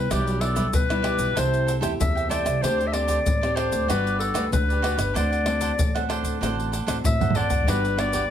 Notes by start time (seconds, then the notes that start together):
Already playing: B4
0.10 B1 B2 G3 D4 E4 G4 B4 D5, pandeiro, tamborim, shaker, surdo
0.27 G4 B4 D5, pandeiro, shaker
0.41 E4 G4 A4 B4 D5, pandeiro, tamborim
0.55 G3 D4 E4 G4 B4 D5, pandeiro, shaker, surdo
0.73 B1 B2 B4, pandeiro, shaker, surdo
0.89 G3 D4 E4 G4 B4 D5, pandeiro, tamborim, shaker
1.02 E4 G4 B4 D5, pandeiro, tamborim
1.19 B1, pandeiro, shaker, surdo
1.36 C2 C3 A3 E4 G4 A4 C5 E5 G5, pandeiro, tamborim, shaker, surdo
1.54 pandeiro, shaker
1.67 A4 C5 E5 G5, pandeiro, shaker
1.80 E2 A3 E4 G4 A4 C5 E5 G5, pandeiro, tamborim, shaker, surdo
2.00 E2 C3 E5, pandeiro, shaker, surdo
2.15 C5 E5 G5, pandeiro, shaker
2.29 A3 E4 G4 A4 C5 D5 E5 G5, pandeiro, tamborim, shaker
2.44 C2 C5 E5 G5, pandeiro, tamborim, shaker, surdo
2.62 D2 D3 A3 C4 D4 G4 C5 D5, pandeiro, tamborim, shaker, surdo
2.78 G4 C5 D5, pandeiro, shaker
2.87 E5
2.92 A3 C4 D4 G4 C5 D5, pandeiro, tamborim
3.08 D4 G4 C5 D5, pandeiro, shaker, surdo
3.26 A1 A2, pandeiro, shaker, surdo
3.41 A3 C4 G4 C5 D5, pandeiro, tamborim, shaker
3.56 D4 G4 C5 D5, pandeiro, tamborim
3.72 D2, pandeiro, shaker, surdo
3.88 G1 G3 D4 F#4 G4 B4 D5, pandeiro, tamborim, shaker, surdo
4.07 pandeiro, shaker
4.19 F#4 G4 A4 B4 D5, pandeiro
4.34 D2 D4 F#4 G4 B4 D5, pandeiro, tamborim, shaker, surdo
4.52 D2 D3 B4, pandeiro, shaker, surdo
4.69 G4 B4 D5, pandeiro, shaker
4.82 D4 F#4 G4 B4 D5, pandeiro, tamborim
4.97 G1 G4 B4 D5, pandeiro, tamborim, shaker, surdo
5.14 D2 D3 A3 C4 D4 F#4 A4 C5 D5 F#5, pandeiro, tamborim, shaker, surdo
5.31 A4 C5 F#5, pandeiro, shaker
5.45 A3 C4 D4 F#4 A4 C5 F#5, pandeiro, tamborim
5.61 D4 A4 C5 F#5, pandeiro, shaker, surdo
5.78 A1 A2, pandeiro, shaker, surdo
5.95 A3 C4 F#4 A4 C5 F#5, pandeiro, tamborim, shaker
6.09 D4 A4 C5 F#5, pandeiro, tamborim
6.22 D2, pandeiro, shaker, surdo
6.41 A1 D3 A3 C4 D4 F#4 A4 C5 F#5, pandeiro, tamborim, shaker, surdo
6.60 pandeiro, shaker
6.72 D4 A4 C5 F#5, pandeiro, shaker
6.86 A1 A3 C4 D4 F#4 A4 C5 F#5, pandeiro, tamborim, shaker, surdo
7.04 A1 A2 E5, pandeiro, shaker, surdo
7.21 A4 C5 F#5, surdo, pandeiro, shaker
7.30 A3, surdo
7.35 C4 D4 F#4 A4 C5 D5 F#5, pandeiro
7.50 A1 A4 C5 F#5, pandeiro, shaker, surdo
7.63 F#4, surdo
7.67 G1 G3 B3 D4 F#4 G4 B4 D5, pandeiro, tamborim, shaker, surdo
7.84 G4 B4 D5, pandeiro, shaker
7.96 B3 D4 F#4 G4 B4 D5, pandeiro, tamborim
8.13 F#4 G4 B4 D5, pandeiro, shaker, surdo